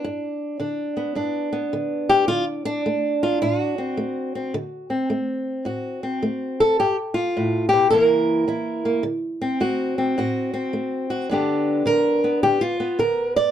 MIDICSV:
0, 0, Header, 1, 2, 480
1, 0, Start_track
1, 0, Tempo, 563380
1, 36, Time_signature, 4, 2, 24, 8
1, 11513, End_track
2, 0, Start_track
2, 0, Title_t, "Steel-string acoustic guitar"
2, 0, Program_c, 0, 25
2, 0, Note_on_c, 0, 62, 44
2, 38, Note_on_c, 0, 43, 70
2, 482, Note_off_c, 0, 43, 0
2, 507, Note_on_c, 0, 50, 63
2, 510, Note_off_c, 0, 62, 0
2, 513, Note_on_c, 0, 62, 43
2, 824, Note_on_c, 0, 59, 43
2, 956, Note_off_c, 0, 50, 0
2, 983, Note_on_c, 0, 43, 55
2, 986, Note_off_c, 0, 62, 0
2, 989, Note_on_c, 0, 62, 47
2, 1289, Note_off_c, 0, 59, 0
2, 1299, Note_on_c, 0, 59, 46
2, 1433, Note_off_c, 0, 43, 0
2, 1474, Note_on_c, 0, 50, 60
2, 1785, Note_on_c, 0, 67, 93
2, 1918, Note_off_c, 0, 50, 0
2, 1929, Note_off_c, 0, 59, 0
2, 1938, Note_off_c, 0, 67, 0
2, 1942, Note_on_c, 0, 65, 96
2, 1955, Note_on_c, 0, 50, 59
2, 2078, Note_off_c, 0, 65, 0
2, 2258, Note_off_c, 0, 62, 0
2, 2261, Note_on_c, 0, 62, 75
2, 2398, Note_off_c, 0, 50, 0
2, 2436, Note_on_c, 0, 57, 62
2, 2752, Note_on_c, 0, 65, 86
2, 2878, Note_off_c, 0, 57, 0
2, 2908, Note_off_c, 0, 65, 0
2, 2911, Note_on_c, 0, 65, 80
2, 2916, Note_on_c, 0, 45, 63
2, 3065, Note_off_c, 0, 65, 0
2, 3065, Note_on_c, 0, 66, 80
2, 3218, Note_off_c, 0, 62, 0
2, 3222, Note_on_c, 0, 60, 47
2, 3358, Note_off_c, 0, 45, 0
2, 3386, Note_on_c, 0, 57, 61
2, 3699, Note_off_c, 0, 60, 0
2, 3708, Note_on_c, 0, 60, 43
2, 3832, Note_off_c, 0, 57, 0
2, 3852, Note_off_c, 0, 60, 0
2, 3870, Note_on_c, 0, 50, 70
2, 4175, Note_on_c, 0, 60, 42
2, 4177, Note_off_c, 0, 66, 0
2, 4314, Note_off_c, 0, 50, 0
2, 4343, Note_on_c, 0, 57, 61
2, 4790, Note_off_c, 0, 57, 0
2, 4815, Note_on_c, 0, 45, 58
2, 4822, Note_on_c, 0, 66, 45
2, 5128, Note_off_c, 0, 60, 0
2, 5138, Note_on_c, 0, 60, 44
2, 5265, Note_off_c, 0, 45, 0
2, 5304, Note_on_c, 0, 57, 61
2, 5612, Note_off_c, 0, 66, 0
2, 5626, Note_on_c, 0, 69, 78
2, 5749, Note_off_c, 0, 57, 0
2, 5766, Note_off_c, 0, 60, 0
2, 5787, Note_off_c, 0, 69, 0
2, 5790, Note_on_c, 0, 67, 86
2, 5794, Note_on_c, 0, 43, 62
2, 5926, Note_off_c, 0, 67, 0
2, 6085, Note_on_c, 0, 65, 82
2, 6235, Note_off_c, 0, 43, 0
2, 6276, Note_on_c, 0, 45, 57
2, 6547, Note_off_c, 0, 65, 0
2, 6550, Note_on_c, 0, 67, 87
2, 6579, Note_off_c, 0, 45, 0
2, 6587, Note_on_c, 0, 47, 58
2, 6731, Note_off_c, 0, 67, 0
2, 6734, Note_on_c, 0, 70, 91
2, 6746, Note_off_c, 0, 47, 0
2, 6749, Note_on_c, 0, 48, 65
2, 6756, Note_on_c, 0, 52, 48
2, 6760, Note_on_c, 0, 58, 50
2, 6769, Note_on_c, 0, 64, 49
2, 7192, Note_off_c, 0, 48, 0
2, 7212, Note_off_c, 0, 52, 0
2, 7219, Note_off_c, 0, 64, 0
2, 7222, Note_on_c, 0, 52, 62
2, 7229, Note_on_c, 0, 64, 50
2, 7531, Note_off_c, 0, 58, 0
2, 7542, Note_on_c, 0, 58, 46
2, 7669, Note_off_c, 0, 52, 0
2, 7686, Note_off_c, 0, 64, 0
2, 7687, Note_off_c, 0, 58, 0
2, 7694, Note_on_c, 0, 50, 73
2, 7699, Note_off_c, 0, 70, 0
2, 8022, Note_on_c, 0, 60, 56
2, 8145, Note_off_c, 0, 50, 0
2, 8182, Note_on_c, 0, 57, 60
2, 8187, Note_on_c, 0, 66, 66
2, 8493, Note_off_c, 0, 60, 0
2, 8503, Note_on_c, 0, 60, 49
2, 8629, Note_off_c, 0, 57, 0
2, 8666, Note_off_c, 0, 66, 0
2, 8671, Note_on_c, 0, 45, 62
2, 8677, Note_on_c, 0, 66, 62
2, 8966, Note_off_c, 0, 60, 0
2, 8976, Note_on_c, 0, 60, 57
2, 9114, Note_off_c, 0, 45, 0
2, 9143, Note_on_c, 0, 57, 56
2, 9447, Note_off_c, 0, 66, 0
2, 9458, Note_on_c, 0, 66, 57
2, 9591, Note_off_c, 0, 57, 0
2, 9606, Note_off_c, 0, 60, 0
2, 9606, Note_off_c, 0, 66, 0
2, 9623, Note_on_c, 0, 43, 63
2, 9636, Note_on_c, 0, 50, 45
2, 9639, Note_on_c, 0, 59, 45
2, 9647, Note_on_c, 0, 62, 47
2, 9651, Note_on_c, 0, 67, 42
2, 10071, Note_off_c, 0, 43, 0
2, 10090, Note_off_c, 0, 50, 0
2, 10101, Note_on_c, 0, 50, 62
2, 10106, Note_off_c, 0, 67, 0
2, 10110, Note_on_c, 0, 70, 94
2, 10418, Note_off_c, 0, 59, 0
2, 10428, Note_on_c, 0, 59, 45
2, 10551, Note_off_c, 0, 50, 0
2, 10587, Note_off_c, 0, 70, 0
2, 10591, Note_on_c, 0, 50, 57
2, 10591, Note_on_c, 0, 67, 83
2, 10741, Note_off_c, 0, 62, 0
2, 10744, Note_on_c, 0, 65, 78
2, 10749, Note_off_c, 0, 67, 0
2, 10894, Note_off_c, 0, 59, 0
2, 10905, Note_on_c, 0, 59, 47
2, 11037, Note_off_c, 0, 50, 0
2, 11064, Note_on_c, 0, 50, 62
2, 11068, Note_off_c, 0, 65, 0
2, 11071, Note_on_c, 0, 70, 77
2, 11383, Note_off_c, 0, 70, 0
2, 11386, Note_on_c, 0, 74, 86
2, 11513, Note_off_c, 0, 50, 0
2, 11513, Note_off_c, 0, 59, 0
2, 11513, Note_off_c, 0, 74, 0
2, 11513, End_track
0, 0, End_of_file